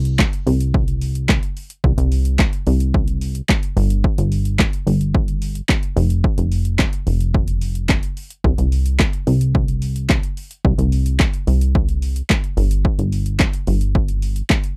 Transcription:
Already playing: analog synth bass C2
0.05 closed hi-hat
0.19 kick, snare, clap
0.33 closed hi-hat
0.47 analog synth bass C2, open hi-hat
0.60 closed hi-hat
0.74 kick
0.88 closed hi-hat
1.01 open hi-hat
1.15 closed hi-hat
1.29 kick, snare, clap
1.43 closed hi-hat
1.57 open hi-hat
1.70 closed hi-hat
1.84 analog synth bass C2, kick
1.98 analog synth bass C2, closed hi-hat
2.12 open hi-hat
2.25 closed hi-hat
2.39 kick, snare, clap
2.53 closed hi-hat
2.67 analog synth bass C2, open hi-hat
2.80 closed hi-hat
2.94 kick
3.08 closed hi-hat
3.21 open hi-hat
3.35 closed hi-hat
3.49 kick, snare, clap
3.63 closed hi-hat
3.77 analog synth bass G1, open hi-hat
3.90 closed hi-hat
4.04 kick
4.18 analog synth bass G1, closed hi-hat
4.32 open hi-hat
4.45 closed hi-hat
4.59 kick, snare, clap
4.73 closed hi-hat
4.87 analog synth bass G1, open hi-hat
5.01 closed hi-hat
5.15 kick
5.28 closed hi-hat
5.42 open hi-hat
5.55 closed hi-hat
5.69 kick, snare, clap
5.83 closed hi-hat
5.96 analog synth bass F1, open hi-hat
6.10 closed hi-hat
6.24 kick
6.38 analog synth bass F1, closed hi-hat
6.52 open hi-hat
6.65 closed hi-hat
6.79 kick, snare, clap
6.93 closed hi-hat
7.07 analog synth bass F1, open hi-hat
7.21 closed hi-hat
7.34 kick
7.48 closed hi-hat
7.61 open hi-hat
7.75 closed hi-hat
7.89 kick, snare, clap
8.03 closed hi-hat
8.17 open hi-hat
8.30 closed hi-hat
8.44 analog synth bass C2, kick
8.58 analog synth bass C2, closed hi-hat
8.72 open hi-hat
8.86 closed hi-hat
8.99 kick, snare, clap
9.13 closed hi-hat
9.27 analog synth bass C2, open hi-hat
9.41 closed hi-hat
9.55 kick
9.68 closed hi-hat
9.82 open hi-hat
9.96 closed hi-hat
10.09 kick, snare, clap
10.23 closed hi-hat
10.37 open hi-hat
10.51 closed hi-hat
10.65 analog synth bass C2, kick
10.78 analog synth bass C2, closed hi-hat
10.92 open hi-hat
11.06 closed hi-hat
11.19 kick, snare, clap
11.34 closed hi-hat
11.47 analog synth bass C2, open hi-hat
11.61 closed hi-hat
11.75 kick
11.89 closed hi-hat
12.02 open hi-hat
12.16 closed hi-hat
12.30 kick, snare, clap
12.44 closed hi-hat
12.57 analog synth bass G1, open hi-hat
12.71 closed hi-hat
12.85 kick
12.98 analog synth bass G1, closed hi-hat
13.12 open hi-hat
13.26 closed hi-hat
13.39 kick, snare, clap
13.53 closed hi-hat
13.67 analog synth bass G1, open hi-hat
13.81 closed hi-hat
13.95 kick
14.08 closed hi-hat
14.22 open hi-hat
14.36 closed hi-hat
14.50 kick, snare, clap
14.64 closed hi-hat

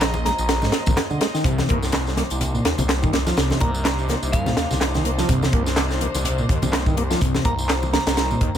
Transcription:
Already playing: detuned saw bass A#1, string section A#3 F4 G#4 C5 D#5
0.01 snare, clap, closed hi-hat, tambourine
0.14 tambourine, muted conga
0.25 tonewheel organ G#3, synth bell A#5, snare, closed hi-hat, high conga
0.38 detuned saw bass A#1, tambourine
0.49 snare, closed hi-hat, tambourine
0.62 tonewheel organ G#2, snare, tambourine, muted conga
0.72 snare, closed hi-hat
0.86 detuned saw bass A#1, tonewheel organ A#2, kick, tambourine, high conga
0.97 snare, clap, closed hi-hat, tambourine, muted conga
1.10 tonewheel organ D3, tambourine, low conga
1.21 tonewheel organ G#3, snare, closed hi-hat
1.34 tonewheel organ D#3, snare, tambourine
1.44 detuned saw bass C2, tonewheel organ C3, string section C3 A#3 D4 D#4 C5, kick, closed hi-hat, tambourine
1.58 snare, tambourine, muted conga, high conga
1.69 detuned saw bass C2, tonewheel organ A#3, kick, closed hi-hat
1.82 snare, tambourine
1.92 snare, clap, closed hi-hat, tambourine, muted conga
2.07 snare, tambourine
2.17 tonewheel organ A#3, snare, closed hi-hat, high conga
2.30 detuned saw bass C2, closed hi-hat, tambourine
2.41 closed hi-hat, tambourine, muted conga, low conga
2.55 tonewheel organ A#2, tambourine
2.65 detuned saw bass D#2, snare, closed hi-hat
2.78 detuned saw bass C2, tonewheel organ C3, closed hi-hat, tambourine, muted conga, high conga, low conga
2.89 snare, clap, closed hi-hat, tambourine
3.02 tonewheel organ D#3, kick, tambourine
3.13 tonewheel organ A#3, snare, closed hi-hat
3.26 tonewheel organ F3, snare, tambourine, muted conga
3.37 detuned saw bass C2, tonewheel organ C3, snare, closed hi-hat, tambourine
3.50 snare, tambourine, high conga
3.60 detuned saw bass C2, tonewheel organ A#3, synth bell A#5, kick, closed hi-hat, muted conga, low conga
3.75 tambourine
3.85 snare, clap, closed hi-hat, tambourine
3.99 tambourine
4.08 tonewheel organ A#3, snare, closed hi-hat, muted conga, high conga
4.23 detuned saw bass C2, tambourine
4.32 synth bell F5, kick, closed hi-hat, tambourine
4.46 tonewheel organ A#2, snare, tambourine, muted conga
4.57 detuned saw bass D#2, snare, closed hi-hat
4.71 detuned saw bass C2, tonewheel organ C3, snare, tambourine, high conga
4.81 snare, clap, closed hi-hat, tambourine
4.94 tonewheel organ D#3, snare, tambourine, muted conga, low conga
5.05 tonewheel organ A#3, closed hi-hat
5.18 tonewheel organ F3, snare, tambourine
5.29 detuned saw bass C2, tonewheel organ C3, kick, closed hi-hat, tambourine, muted conga
5.42 snare, tambourine, high conga
5.53 detuned saw bass C2, tonewheel organ A#3, kick, closed hi-hat
5.66 snare, tambourine
5.76 snare, clap, closed hi-hat, tambourine, muted conga
5.91 snare, tambourine
6.01 tonewheel organ A#3, closed hi-hat, high conga
6.14 detuned saw bass C2, closed hi-hat, tambourine, muted conga
6.24 closed hi-hat, tambourine, low conga
6.38 tonewheel organ A#2, tambourine
6.49 detuned saw bass D#2, kick, closed hi-hat
6.62 detuned saw bass C2, tonewheel organ C3, closed hi-hat, tambourine, muted conga, high conga, low conga
6.73 snare, clap, closed hi-hat, tambourine
6.86 tonewheel organ D#3, kick, tambourine
6.97 tonewheel organ A#3, closed hi-hat, muted conga
7.10 tonewheel organ F3, snare, tambourine
7.21 detuned saw bass C2, tonewheel organ C3, kick, closed hi-hat, tambourine
7.34 snare, tambourine, high conga
7.45 detuned saw bass C2, tonewheel organ A#3, synth bell A#5, kick, closed hi-hat, muted conga, low conga
7.58 tambourine
7.69 snare, clap, closed hi-hat, tambourine
7.83 tambourine, muted conga
7.93 tonewheel organ A#3, synth bell A#5, snare, closed hi-hat, high conga
8.06 detuned saw bass C2, snare, closed hi-hat, tambourine
8.17 snare, closed hi-hat, tambourine
8.30 tonewheel organ A#2, tambourine, muted conga
8.41 detuned saw bass D#2, kick, closed hi-hat
8.55 detuned saw bass C2

